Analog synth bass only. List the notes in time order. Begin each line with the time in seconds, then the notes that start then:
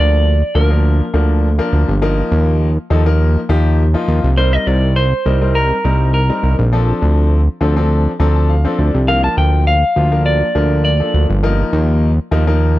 Already playing: D2
0.55 D2
1.14 D2
1.73 D2
1.88 G1
2.32 D#2
2.90 D#2
3.49 D#2
4.08 D#2
4.24 C2
4.67 C2
5.26 C2
5.85 C2
6.43 C2
6.59 A#1
7.02 D2
7.61 D2
8.20 D2
8.79 D2
8.94 C2
9.37 D2
9.96 D2
10.55 D2
11.14 D2
11.30 G1
11.73 D#2
12.32 D#2